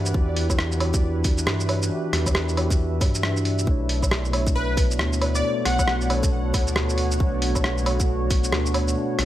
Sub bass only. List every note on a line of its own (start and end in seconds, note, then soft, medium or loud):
0.00 0.13 G2 loud
0.15 1.46 E2 loud
1.47 1.90 G2 medium
2.13 3.00 E2 loud
3.01 3.66 G2 loud
3.67 4.98 B1 loud
4.99 5.43 D2 medium
5.66 6.53 B1 loud
6.54 7.19 D2 medium
7.20 8.51 B1 loud
8.53 8.96 D2 medium
9.19 9.25 B1 loud